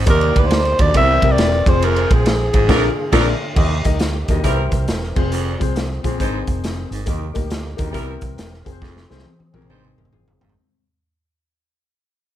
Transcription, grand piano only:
0.06 A#3 D#4 G4 A#4
0.94 C4 E4 G4 A#4
1.23 C4 E4 G4 A#4
1.66 C4 F4 G#4 C5
2.68 D4 F4 A#4 D5
3.12 D4 F4 A#4 D5
3.56 D#4 G4 A#4 D#5
3.84 D#4 G4 A#4 D#5
4.29 D#4 G4 A#4 D#5
4.44 E4 G4 A#4 C5
5.16 C4 F4 G#4 C5
5.59 C4 F4 G#4 C5
6.03 C4 F4 G#4 C5
6.19 C4 D#4 G#4 C5
7.06 A#3 D#4 G4 A#4
7.34 A#3 D#4 G4 A#4
7.77 A#3 D#4 G4 A#4
7.92 C4 E4 G4 A#4
8.65 C4 F4 G#4 A#4
8.72 C5
9.09 C4 F4 G#4 C5
9.53 C4 F4 G#4 A#4
9.69 C4 D#4 G#4 C5

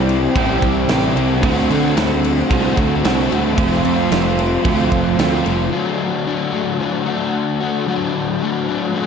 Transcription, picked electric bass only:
Already playing: C2
0.36 A1
0.63 C2
0.90 A1
1.16 C2
1.43 D2
1.70 D3
1.97 D2
2.50 C2
2.77 D2
3.05 C2
3.31 D2
3.58 F1
3.85 F2
4.12 F1
4.65 D2
4.92 F1
5.19 D2
5.46 F1

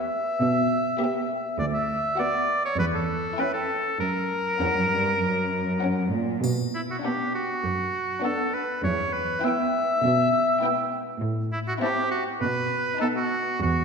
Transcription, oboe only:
Already playing: E5
1.59 D5
1.73 E5
2.19 D5
2.65 C#5
2.79 B4
2.95 A4
3.40 B4
3.54 A4
4.00 A#4
6.75 E4
6.91 F#4
7.05 G4
7.35 F#4
8.24 A4
8.54 B4
8.84 C#5
9.13 B4
9.44 E5
11.52 E4
11.68 F#4
11.82 G4
12.11 F#4
12.41 B4
13.01 A4
13.16 F#4
13.62 F#4

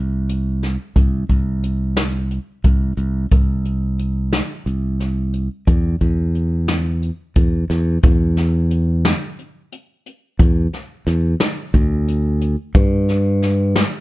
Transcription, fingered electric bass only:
Already playing: C2
0.96 C2
1.29 C2
2.64 C2
2.97 C2
3.32 C2
4.66 C2
5.67 E2
6.01 E2
7.36 E2
7.70 E2
8.04 E2
10.39 E2
11.07 E2
11.74 D2
12.75 G2

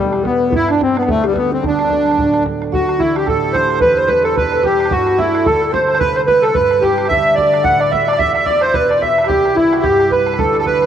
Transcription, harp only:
Already playing: E2 G3 A3 B3 D4 E4
0.00 B2
0.26 G3 B3 E4
0.54 G2
0.82 B3 D4
1.09 D2
1.35 G3 B3 D4
1.63 D2
1.88 F#3 A3
1.94 D4
2.19 A2
2.45 F#3 A3 D4
2.73 D2
3.00 E3 A3 D4
3.28 A2
3.54 E3 A3 D4
3.83 E2
4.10 E3 G3 D4
4.37 B2
4.64 E3 G3 D4
4.92 G2
5.18 G3 A3 D4
5.46 D2
5.73 G3 A3 D4
6.00 C3
6.28 G3 C4 E4
6.57 G2
6.83 G3 C4 E4
7.10 D3
7.38 A3 D4 F#4
7.65 A2
7.92 A3 D4 F#4
8.20 E2
8.47 B3 E4 F#4
8.75 B2
9.01 B3 E4 F#4
9.30 C2
9.56 G3 C4 E4
9.85 G2
10.11 C4 E4
10.38 D2
10.65 F#3 A3 D4

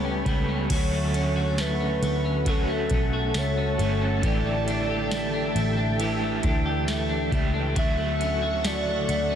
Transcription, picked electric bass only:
Already playing: C#2
0.26 C#2
0.70 D2
2.02 D2
2.91 B1
3.35 C#2
3.79 G1
4.23 A1
5.55 A1
6.44 D2
7.32 C#2
7.76 D2
9.09 D2

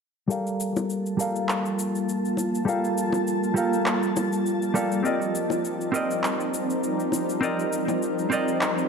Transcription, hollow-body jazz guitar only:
0.28 G3 G4 A4 A#4 F5
1.17 G3 G4 A4 A#4 F5
2.65 G3 G4 A4 A#4 F5
3.54 G3 G4 A4 A#4 F5
4.74 G3 G4 A4 A#4 F5
5.03 C4 G4 A#4 D5 D#5
5.92 C4 G4 A#4 D5 D#5
7.41 C4 G4 A#4 D5 D#5
8.30 C4 G4 A#4 D5 D#5

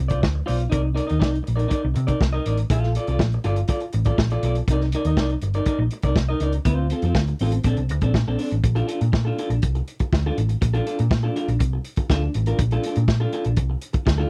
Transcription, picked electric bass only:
0.00 C2
0.23 D2
0.49 B1
0.73 C2
1.11 D#2
1.48 A#1
1.84 C2
1.96 C3
2.21 C2
2.46 A1
2.71 A#1
3.08 C2
3.20 A#1
3.45 G1
3.94 A1
4.18 A#1
4.43 B1
4.68 C2
5.05 D#2
5.42 G1
5.79 A#1
6.04 C2
6.16 C2
6.41 C#2
6.66 D2
7.03 F2
7.15 D2
7.41 A1
7.65 A#1
7.78 C2
7.91 D2
8.02 A#1
8.14 A#2
8.27 A#1
8.52 A1
8.64 A#1
9.02 A#2
9.13 A#2
9.50 A#1
9.63 C2
10.13 D2
10.38 A1
10.62 A#1
11.00 A#2
11.11 A#2
11.48 A#1
11.61 C2
12.10 D2
12.35 A1
12.59 A#1
12.97 A#2
13.08 A#2
13.46 A#1
13.58 C2
14.07 D2

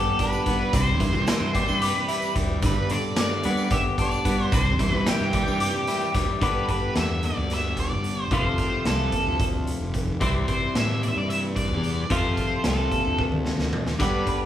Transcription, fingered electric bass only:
0.47 G2
0.73 C2
1.00 G2
1.15 C2
1.40 G2
1.68 G2
2.36 D2
2.62 G1
3.45 G2
4.25 G2
4.52 C2
4.79 G2
4.93 C2
5.20 G2
5.47 G2
6.15 D2
6.41 G1
6.96 E2
7.36 D2
7.91 G1
8.31 F1
8.86 C2
9.26 D2
9.80 F1
10.21 C2
10.76 A2
11.16 G2
11.70 E2
12.10 F2
12.64 C2
13.05 D2
13.59 D2
13.99 G2

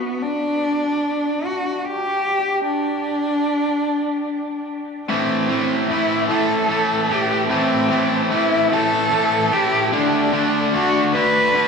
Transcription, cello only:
Already playing: B3
0.22 D4
1.45 F#4
1.85 G4
2.66 D4
5.10 C4
5.90 E4
6.30 A4
7.11 G4
7.50 C4
8.33 E4
8.73 A4
9.53 G4
9.95 D4
10.74 F#4
11.16 B4

